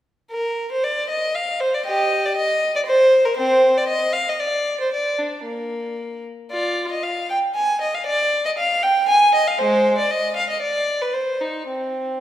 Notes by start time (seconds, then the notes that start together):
0.31 A#4
0.72 C5
0.84 D5
1.09 D#5
1.35 F5
1.60 C5
1.74 D5
1.85 G4 D#5
2.26 D5
2.37 D#5
2.76 D5
2.86 C5
3.25 A#4
3.37 C4 C5
3.77 D5
3.88 D#5
4.13 F5
4.29 D#5
4.40 D5
4.81 C5
4.94 D5
5.19 D4
5.46 A#3
6.51 F4 D5
6.92 D#5
7.03 F5
7.30 G5
7.55 G#5
7.81 D#5
7.94 F5
8.06 D5
8.46 D#5
8.58 F5
8.83 G5
9.09 G#5
9.35 D#5
9.47 F5
9.59 G#3 C5
9.98 D5
10.11 D#5
10.36 F5
10.50 D#5
10.62 D5
11.02 B4
11.14 C5
11.41 D#4
11.69 C4